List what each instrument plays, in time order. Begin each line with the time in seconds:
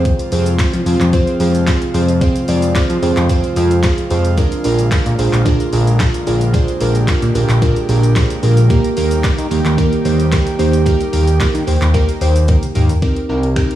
Already playing: analog synth bass F2, analog synth pad C3 F3 G#3 F4, synth keys C4 F4 G#4 C5
0.05 kick, closed hi-hat, shaker
0.19 closed hi-hat, shaker
0.32 analog synth bass F2, synth keys C4 F4 G#4 C5, open hi-hat, shaker
0.46 closed hi-hat, shaker
0.59 synth keys C4 F4 G#4 C5, kick, snare, clap, closed hi-hat, shaker
0.73 analog synth bass F3, closed hi-hat, shaker
0.86 analog synth bass F2, synth keys C4 F4 G#4 C5, open hi-hat, shaker
1.00 analog synth bass F2, clap, closed hi-hat, shaker
1.13 synth keys C4 F4 G#4 C5, kick, closed hi-hat, shaker
1.27 closed hi-hat, shaker
1.40 analog synth bass F2, synth keys C4 F4 G#4 C5, open hi-hat, shaker
1.55 closed hi-hat, shaker
1.67 synth keys C4 F4 G#4 C5, kick, snare, clap, closed hi-hat, shaker
1.82 closed hi-hat, shaker
1.94 analog synth bass F2, synth keys C4 F4 G#4 C5, open hi-hat, shaker
2.09 closed hi-hat, shaker
2.21 synth keys C4 F4 G#4 C5, kick, closed hi-hat, shaker
2.36 closed hi-hat, shaker
2.48 analog synth bass F2, synth keys C4 F4 G#4 D5, open hi-hat, shaker
2.62 closed hi-hat, shaker
2.75 synth keys C4 F4 G#4 C5, kick, snare, clap, closed hi-hat, shaker
2.90 analog synth bass F3, closed hi-hat, shaker
3.02 analog synth bass F2, synth keys C4 F4 G#4 C5, open hi-hat, shaker
3.17 analog synth bass F2, clap, closed hi-hat, shaker
3.29 synth keys C4 F4 G#4 C5, kick, closed hi-hat, shaker
3.44 closed hi-hat, shaker
3.56 analog synth bass F2, synth keys C4 F4 G#4 C5, open hi-hat, shaker
3.71 closed hi-hat, shaker
3.83 synth keys C4 F4 G#4 C5, kick, snare, clap, closed hi-hat, shaker
3.98 closed hi-hat, shaker
4.10 analog synth bass F2, synth keys C4 F4 G#4 C5, open hi-hat, shaker
4.25 closed hi-hat, shaker
4.37 analog synth pad D3 A#3, synth keys D4 F4 G#4 A#4, kick, closed hi-hat, shaker
4.52 closed hi-hat, shaker
4.64 analog synth bass A#1, synth keys D4 F4 G#4 A#4, open hi-hat, shaker
4.79 closed hi-hat, shaker
4.91 synth keys D4 F4 G#4 A#4, kick, snare, clap, closed hi-hat, shaker
5.06 analog synth bass A#2, closed hi-hat, shaker
5.18 analog synth bass A#1, synth keys D4 F4 G#4 C5, open hi-hat, shaker
5.33 analog synth bass A#1, clap, closed hi-hat, shaker
5.45 synth keys D4 F4 G#4 A#4, kick, closed hi-hat, shaker
5.60 closed hi-hat, shaker
5.72 analog synth bass A#1, synth keys D4 F4 G#4 A#4, open hi-hat, shaker
5.87 closed hi-hat, shaker
6.00 synth keys D4 F4 G#4 A#4, kick, snare, clap, closed hi-hat, shaker
6.14 closed hi-hat, shaker
6.26 analog synth bass A#1, synth keys D4 F4 G#4 A#4, open hi-hat, shaker
6.41 closed hi-hat, shaker
6.53 synth keys D4 F4 G#4 C5, analog synth pad G4, kick, closed hi-hat, shaker
6.68 closed hi-hat, shaker
6.80 analog synth bass A#1, synth keys D4 F4 G#4 A#4, open hi-hat, shaker
6.95 closed hi-hat, shaker
7.08 synth keys D4 F4 G#4 A#4, kick, snare, clap, closed hi-hat, shaker
7.22 analog synth bass A#2, closed hi-hat, shaker
7.35 analog synth bass A#1, synth keys D4 F4 G#4 A#4, open hi-hat, shaker
7.49 analog synth bass A#1, clap, closed hi-hat, shaker
7.62 synth keys D4 F4 G#4 A#4, kick, closed hi-hat, shaker
7.76 closed hi-hat, shaker
7.89 analog synth bass A#1, synth keys D4 F4 G#4 A#4, open hi-hat, shaker
8.03 closed hi-hat, shaker
8.16 synth keys D4 F4 G#4 C5, kick, snare, clap, closed hi-hat, shaker
8.30 closed hi-hat, shaker
8.43 analog synth bass A#1, synth keys D4 F4 G#4 A#4, open hi-hat, shaker
8.57 closed hi-hat, shaker
8.70 analog synth pad D#3 G3 G4, synth keys A#3 D#4 G4 A#4, kick, closed hi-hat, shaker
8.84 closed hi-hat, shaker
8.97 analog synth bass D#2, synth keys A#3 D#4 G4 A#4, open hi-hat, shaker
9.11 closed hi-hat, shaker
9.24 synth keys A#3 D#4 G4 A#4, kick, snare, clap, closed hi-hat, shaker
9.38 analog synth bass D#3, closed hi-hat, shaker
9.51 analog synth bass D#2, synth keys A#3 D#4 G4 A#4, open hi-hat, shaker
9.65 analog synth bass D#2, clap, closed hi-hat, shaker
9.78 synth keys A#3 D#4 G4 A#4, kick, closed hi-hat, shaker
9.93 closed hi-hat, shaker
10.05 analog synth bass D#2, synth keys A#3 D#4 G4 C5, open hi-hat, shaker
10.20 closed hi-hat, shaker
10.32 synth keys A#3 D#4 G4 A#4, kick, snare, clap, closed hi-hat, shaker
10.47 closed hi-hat, shaker
10.59 analog synth bass D#2, synth keys A#3 D#4 G4 C5, open hi-hat, shaker
10.73 closed hi-hat, shaker
10.86 synth keys A#3 D#4 G4 A#4, kick, closed hi-hat, shaker
11.01 closed hi-hat, shaker
11.13 analog synth bass D#2, synth keys A#3 D#4 G4 A#4, open hi-hat, shaker
11.28 closed hi-hat, shaker
11.40 synth keys A#3 D#4 G4 A#4, kick, snare, clap, closed hi-hat, shaker
11.55 analog synth bass D#3, closed hi-hat, shaker
11.67 analog synth bass D#2, synth keys A#3 D#4 G4 C5, open hi-hat, shaker
11.82 analog synth bass D#2, clap, closed hi-hat, shaker
11.94 synth keys A#3 D#4 G4 A#4, kick, closed hi-hat, shaker
12.09 closed hi-hat, shaker
12.21 analog synth bass D#2, synth keys A#3 D#4 G4 C5, open hi-hat, shaker
12.36 closed hi-hat, shaker
12.48 synth keys A#3 D#4 G4 A#4, kick, closed hi-hat, high tom, shaker
12.63 closed hi-hat, mid tom, shaker
12.75 analog synth bass D#2, synth keys A#3 D#4 G4 A#4, mid tom, open hi-hat, shaker
12.89 closed hi-hat, floor tom, shaker
13.02 synth keys C4 D#4 G4 A#4, kick, closed hi-hat
13.17 closed hi-hat
13.29 analog synth bass C2, synth keys C4 D#4 G4 A#4
13.43 closed hi-hat
13.56 synth keys C4 D#4 G4 A#4, finger snap, kick, closed hi-hat
13.71 closed hi-hat